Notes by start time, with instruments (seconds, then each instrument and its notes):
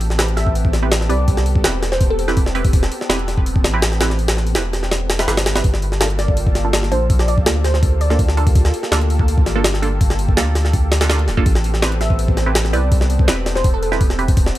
Already playing: sub bass A1, analog synth pad B3 C4 G4 A4
0.01 open hi-hat
0.10 snare
0.19 synth stab C4 E4 G4 B4, snare, open hi-hat
0.28 closed hi-hat
0.37 synth pluck E5, snare, open hi-hat
0.47 kick
0.55 open hi-hat
0.65 kick
0.73 snare, open hi-hat
0.83 synth stab C4 E4 G4 B4
0.92 snare, open hi-hat
1.01 snare
1.09 sub bass C2, synth stab C4 E4 G4 B4, synth pluck D5, open hi-hat
1.28 kick, open hi-hat
1.37 snare
1.46 open hi-hat
1.56 kick
1.64 sub bass E1, synth stab C4 E4 G4 B4, snare, open hi-hat
1.83 snare, open hi-hat
1.92 synth pluck C5, snare
2.01 kick, open hi-hat
2.10 synth pluck A4
2.19 synth pluck A4, open hi-hat
2.28 synth stab C4 E4 G4 B4, snare
2.37 kick, open hi-hat
2.46 snare
2.55 synth stab C4 E4 G4 B4, open hi-hat
2.65 kick, open hi-hat
2.73 kick, open hi-hat
2.83 snare
2.92 open hi-hat
3.01 snare
3.09 sub bass E1, synth stab C4 E4 G4 B4, snare, open hi-hat
3.19 closed hi-hat
3.28 snare, open hi-hat
3.37 kick
3.46 open hi-hat
3.56 kick
3.64 sub bass A1, snare, open hi-hat
3.74 synth stab C4 E4 G4 B4
3.82 snare, open hi-hat
3.92 snare
4.01 synth stab C4 E4 G4 B4, snare, open hi-hat
4.10 snare
4.19 open hi-hat
4.28 snare, open hi-hat
4.37 snare
4.47 open hi-hat
4.55 sub bass E1, synth stab C4 E4 G4 B4, snare, open hi-hat
4.73 snare, open hi-hat
4.83 snare
4.91 snare, open hi-hat
5.10 snare, open hi-hat
5.19 synth stab C4 E4 G4 B4, snare, open hi-hat
5.28 sub bass G1, synth stab C4 E4 G4 B4, snare, open hi-hat
5.37 snare, open hi-hat
5.46 snare, open hi-hat
5.55 synth stab C4 E4 G4 B4, snare, open hi-hat
5.64 sub bass G1, analog synth pad A#3 F4 G4 A4, kick, open hi-hat
5.74 snare
5.82 open hi-hat
5.92 snare
6.01 synth stab A#3 D4 F4 A4, snare, open hi-hat
6.10 closed hi-hat
6.19 synth pluck D5, snare, open hi-hat
6.28 kick
6.37 open hi-hat
6.47 kick
6.55 snare, open hi-hat
6.65 synth stab A#3 D4 F4 A4
6.73 snare, open hi-hat
6.83 snare
6.92 sub bass A#1, synth stab A#3 D4 F4 A4, synth pluck C5, open hi-hat
7.10 kick, open hi-hat
7.19 synth pluck D5, snare
7.28 synth pluck D5, open hi-hat
7.38 kick
7.46 sub bass D2, synth stab A#3 D4 F4 A4, snare, open hi-hat
7.64 synth pluck C5, snare, open hi-hat
7.74 synth pluck C5, snare
7.83 kick, open hi-hat
8.01 synth pluck D5, open hi-hat
8.10 synth stab A#3 D4 F4 A4, synth pluck D5, snare
8.19 kick, open hi-hat
8.29 snare
8.37 synth stab A#3 D4 F4 A4, open hi-hat
8.47 kick, open hi-hat
8.55 kick, open hi-hat
8.65 snare
8.74 open hi-hat
8.83 snare
8.92 sub bass D2, synth stab A#3 D4 F4 A4, snare, open hi-hat
9.01 closed hi-hat
9.10 open hi-hat
9.19 kick
9.28 open hi-hat
9.38 kick
9.46 sub bass G1, snare, open hi-hat
9.55 synth stab A#3 D4 F4 A4
9.64 snare, open hi-hat
9.74 snare
9.82 synth stab A#3 D4 F4 A4, open hi-hat
10.01 kick, open hi-hat
10.10 snare
10.19 open hi-hat
10.28 kick
10.37 sub bass D2, synth stab A#3 D4 F4 A4, snare, open hi-hat
10.55 snare, open hi-hat
10.65 snare
10.73 kick, open hi-hat
10.92 snare, open hi-hat
11.01 synth stab A#3 D4 F4 A4, snare, open hi-hat
11.09 synth stab A#3 D4 F4 A4, snare, open hi-hat
11.19 closed hi-hat
11.28 sub bass D1, snare, open hi-hat
11.37 sub bass G1, synth stab A#3 D4 F4 A4, kick
11.46 sub bass A1, analog synth pad B3 C4, kick, open hi-hat
11.55 snare
11.64 open hi-hat
11.74 snare
11.82 synth stab C4 E4 G4 B4, snare, open hi-hat
11.92 closed hi-hat
12.01 synth pluck E5, snare, open hi-hat
12.10 kick
12.19 open hi-hat
12.28 kick
12.37 snare, open hi-hat
12.46 synth stab C4 E4 G4 B4
12.55 snare, open hi-hat
12.65 snare
12.73 sub bass C2, synth stab C4 E4 G4 B4, synth pluck D5, open hi-hat
12.92 kick, open hi-hat
13.01 snare
13.10 open hi-hat
13.19 kick
13.28 sub bass E1, synth stab C4 E4 G4 B4, snare, open hi-hat
13.46 snare, open hi-hat
13.55 synth pluck C5, snare
13.64 kick, open hi-hat
13.74 synth pluck A4
13.83 synth pluck A4, open hi-hat
13.92 synth stab C4 E4 G4 B4, snare
14.01 kick, open hi-hat
14.10 snare
14.19 synth stab C4 E4 G4 B4, open hi-hat
14.28 kick, open hi-hat
14.37 analog synth pad F#4, kick, open hi-hat
14.46 snare
14.55 open hi-hat